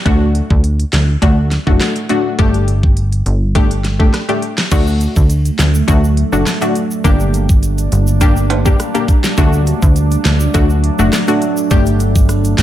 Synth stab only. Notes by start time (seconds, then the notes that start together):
0.05 A3 D4 F#4
1.22 A3 D4 F#4
1.67 A3 D4 F#4
2.09 A3 D4 F#4
2.39 A3 D4 G4
3.55 A3 D4 G4
3.99 A3 D4 G4
4.28 A3 D4 G4
4.71 A3 D4 F#4
5.88 A3 D4 F#4
6.32 A3 D4 F#4
6.61 A3 D4 F#4
7.04 A#3 D4 G4
8.21 A#3 D4 G4
8.65 A#3 D4 G4
8.94 A#3 D4 G4
9.37 A3 D4 F#4
10.54 A3 D4 F#4
10.99 A3 D4 F#4
11.28 A3 D4 F#4
11.71 A3 D4 G4